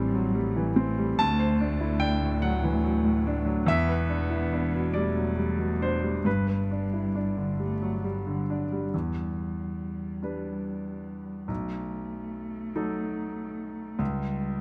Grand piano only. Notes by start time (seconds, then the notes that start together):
Already playing: A2 E3 G3 C4 D4 A4 C6
0.14 F#3
0.35 G3
0.56 E3
0.76 C4
0.98 G3
1.19 D2 A5
1.39 C5
1.60 D4
1.81 E4
2.00 D4 G5
2.22 A2
2.42 F#3 F#5
2.63 E3
2.83 F#3
3.04 A2
3.27 D4
3.46 F#3
3.66 E2 E5
3.88 B4
4.09 D4
4.30 E4
4.53 D4
4.75 B2
4.94 G3 D5
5.17 F#3
5.38 G3
5.58 B2
5.81 D4 C5
6.03 G3
6.25 G2 B4
6.47 B4
6.71 D4
6.93 E4
7.15 D4
7.37 D3
7.59 G3
7.82 F#3
8.04 G3
8.27 D3
8.50 D4
8.72 G3
8.94 E2
10.23 G3 D4 B4
11.48 B1
12.76 F#3 D#4 A4
13.99 C#2